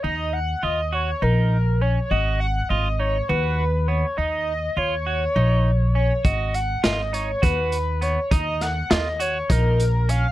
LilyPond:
<<
  \new Staff \with { instrumentName = "Analog synth lead" } { \time 7/8 \key gis \dorian \tempo 4 = 101 dis''8 fis''8 dis''8 cis''8 ais'4 cis''8 | dis''8 fis''8 dis''8 cis''8 b'4 cis''8 | dis''4 cis''2 cis''8 | dis''8 fis''8 dis''8 cis''8 b'4 cis''8 |
dis''8 fis''8 dis''8 cis''8 ais'4 eis''8 | }
  \new Staff \with { instrumentName = "Clean electric guitar" } { \time 7/8 \key gis \dorian dis'4 eis'8 fis'8 dis'4 cis'8 | fis'4 eis'8 dis'8 fis'4 b8 | dis'4 eis'8 fis'8 dis'4 cis'8 | fis'4 eis'8 dis'8 fis'4 b8 |
dis'4 eis'8 fis'8 dis'4 cis'8 | }
  \new Staff \with { instrumentName = "Upright bass" } { \clef bass \time 7/8 \key gis \dorian dis,4 dis,4 ais,,4. | gis,,4 gis,,4 dis,4. | dis,4 dis,4 ais,,4. | gis,,4 gis,,4 dis,4. |
dis,4 dis,4 ais,,4. | }
  \new DrumStaff \with { instrumentName = "Drums" } \drummode { \time 7/8 r4 r4 r4. | r4 r4 r4. | r4 r4 r4. | <hh bd>8 hh8 <hh sn>8 hh8 <hh bd>8 hh8 hh8 |
<hh bd>8 <hh sn>8 <hh sn>8 hh8 <hh bd>8 hh8 hh8 | }
>>